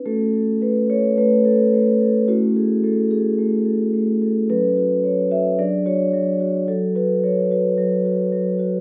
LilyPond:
<<
  \new Staff \with { instrumentName = "Vibraphone" } { \time 4/4 \key a \major \tempo 4 = 109 << { a'4 b'8 cis''8 b'8 a'4. | fis'8 gis'8 a'8 gis'2 r8 | b'4 cis''8 e''8 d''8 cis''4. | a'8 b'8 cis''8 b'2 r8 | } \\ { <cis' fis'>1 | <cis' e'>1 | <cis' a'>2 <d' gis'>2 | fis'1 | } >> }
  \new Staff \with { instrumentName = "Vibraphone" } { \time 4/4 \key a \major a8 a'8 a8 a'8 a4 a8 a'8 | a8 a'8 a8 a'8 a8 a'8 a8 a'8 | fis8 fis'8 fis8 fis'8 fis8 fis'8 fis8 fis'8 | fis8 fis'8 fis8 fis'8 fis8 fis'8 fis8 fis'8 | }
>>